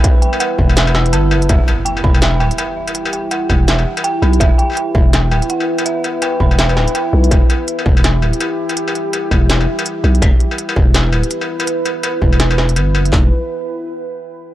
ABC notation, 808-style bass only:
X:1
M:4/4
L:1/8
Q:"Swing 16ths" 1/4=165
K:Em
V:1 name="808-style bass" clef=bass
z3 E,,,3 G,,, F,,, | E,,, z2 E,,,2 D,,, z2 | z3 E,,,2 z2 B,,, | E,,, z2 E,,,2 D,,, z2 |
z3 E,,,2 D,,, z B,,, | E,,, z2 E,,,2 D,,, z2 | z3 E,,,2 z2 B,,, | E,,, z2 E,,,2 D,,, z2 |
z3 E,,,3 G,,, F,,, | E,,, z6 z |]